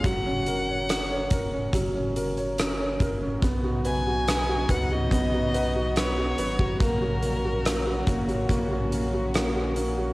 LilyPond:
<<
  \new Staff \with { instrumentName = "Violin" } { \time 4/4 \key fis \mixolydian \tempo 4 = 71 fis''2 r2 | r8 gis''4 fis''16 dis''4~ dis''16 cis''4 | ais'2 r2 | }
  \new Staff \with { instrumentName = "Grand piano" } { \time 4/4 \key fis \mixolydian fis16 cis'16 ais'16 cis''16 cis'16 cis''16 ais'16 cis'16 fis16 cis'16 ais'16 cis''16 cis'16 cis''16 ais'16 cis'16 | b16 fis'16 b'16 fis'16 b'16 fis'16 b'16 fis'16 b16 fis'16 b'16 fis'16 b'16 fis'16 b'16 fis'16 | ais16 fis'16 ais16 fis'16 ais16 fis'16 ais16 fis'16 ais16 fis'16 ais16 fis'16 ais16 fis'16 ais16 fis'16 | }
  \new Staff \with { instrumentName = "String section" } { \clef bass \time 4/4 \key fis \mixolydian << { r1 | fis'1~ | fis'1 | } \\ { r1 | <cis fis b dis'>1 | <ais, cis cis'>1 | } >> }
  \new Staff \with { instrumentName = "Sub bass" } { \clef bass \time 4/4 \key fis \mixolydian fis,,4. e,,8 fis,,2 | b,,4. cis,8 b,,4. gis,,8 | ais,,4. gis,,8 ais,,2 | }
  \new DrumStaff \with { instrumentName = "Drums" } \drummode { \time 4/4 <hh bd>8 hh8 <hh ss>8 <hh bd>8 <hh bd>8 hh16 hh16 <hh ss>8 <hh bd>8 | <hh bd>8 hh8 <hh ss>8 <hh bd>8 <hh bd>8 hh8 <hh ss>8 hh16 bd16 | <hh bd>8 hh8 <hh ss>8 <hh bd>16 hh16 <hh bd>8 hh8 <hh ss>8 hh8 | }
>>